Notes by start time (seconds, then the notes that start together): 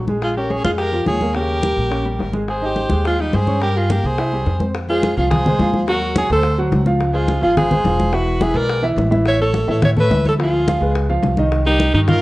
Already playing: A#1
0.08 G#3 G#4, high conga
0.22 F4 G#4, high bongo, high conga
0.35 C#4 G4 A#4 C#5, high bongo, high conga
0.50 G#4 C#5, high bongo, high conga
0.65 F2 G#3 F4 G#4, high bongo, high conga
0.78 G4 A#4, high bongo, high conga
0.92 F3 F4, high bongo, high conga
1.06 D#2 G#4 C#5, high bongo, low bongo, high conga
1.21 A#3 A#4, high conga
1.35 C#3 C#4 G4 A#4, high bongo, high conga
1.49 high bongo, high conga
1.63 G3 G4, high bongo, high conga
1.77 A#1, high bongo, high conga
1.90 C#4 C#5, high bongo, high conga
2.05 G3 G4, high bongo, high conga
2.19 G#1, high bongo, low bongo, high conga
2.33 G#3 G#4, high conga
2.48 G#4 C5, high bongo, high conga
2.62 D#4 G4 C5 D#5, high bongo, high conga
2.76 high bongo, high conga
2.90 D#2 G#3 G#4, high bongo, high conga
3.05 F4 G#4, high bongo, high conga
3.19 G3 D#4 G4, high bongo, high conga
3.33 G2 G#4 C5, high bongo, low bongo, high conga
3.47 C#4 C#5, high conga
3.61 G3 G4 A#4, high bongo, high conga
3.76 F4 G#4, high bongo, high conga
3.89 A#3 G4 A#4, high bongo, high conga
4.03 C2 G#4 C5, high bongo, high conga
4.18 E4 E5, high bongo, high conga
4.32 G3 G4, high bongo, high conga
4.46 F2, high bongo, low bongo, high conga
4.60 C4 C5, high conga
4.74 high bongo, high conga
4.89 G#3 F4 G#4 C5, high bongo, high conga
5.03 high bongo, high conga
5.17 C2 F3 F4 G#4 F5, high bongo, high conga
5.30 G#4 C5, high bongo, high conga, low conga
5.46 G#3 G#4 C5, high conga, low conga
5.59 D#2 F3 F4 F5, high bongo, low bongo, high conga
5.73 high bongo, high conga
5.88 F#3 F#4 A#4 F#5, high bongo, high conga
6.02 high bongo, high conga
6.15 F#3 F#4 G#4 C#5 F#5, high bongo, high conga
6.30 D2 A3 A4 C5, high bongo, high conga
6.43 high bongo, high conga
6.58 F#3 F#4 F#5, high conga
6.72 C#2, high bongo, low bongo, high conga
6.86 F3 F4 F5, high bongo, high conga
7.01 high bongo, high conga
7.13 G#3 F4 G#4 C5, high bongo, high conga
7.28 high bongo, high conga
7.42 G#1 F3 F4 G#4 F5, high bongo, high conga
7.57 G#4 C5, high bongo, high conga, low conga
7.71 G#3 G#4 C5, high conga, low conga
7.84 E1 F3 F4 F5, high bongo, low bongo, high conga
7.99 high bongo, high conga
8.12 E3 E4 F#4 B4 E5, high bongo, high conga
8.27 high bongo, high conga
8.41 E3 E4 G#4 B4 E5, high bongo, high conga
8.54 B1 G#3 G#4 A#4 B4 D5, high bongo, high conga
8.70 high bongo, high conga
8.82 E3 E4 E5, high conga
8.96 A1, high bongo, low bongo, high conga
9.10 E3 E4 E5, high bongo, high conga
9.26 C#5 E5, high bongo
9.40 A3 A4 C#5, high bongo, high conga
9.54 high bongo, high conga
9.68 A2 E3 E4 A4 C#5 E5, high bongo, high conga
9.82 C#5 E5, high bongo, high conga, low conga
9.97 A3 A4 B4 C#5 E5, high conga, low conga
10.10 D2 E3 E4 E5, high bongo, low bongo, high conga
10.26 A4 C#5, high bongo, high conga
10.38 F3 F4 G#4 F5, high bongo, high conga
10.43 F4
10.54 high bongo, high conga
10.67 F3 F4 F5, high bongo, high conga
10.81 C#2 G#3 G#4 B4, high bongo, high conga
10.95 high bongo, high conga
11.09 F3 F4 F5, high conga
11.22 C2, high bongo, low bongo, high conga
11.37 D#3 D#4 D#5, high bongo, high conga
11.52 high bongo, high conga
11.65 G3 D#4 G4 A#4, high bongo, high conga
11.80 high bongo, high conga
11.93 G2 D#3 D#4 G4 D#5, high bongo, high conga
12.08 F4 A#4, high bongo, high conga, low conga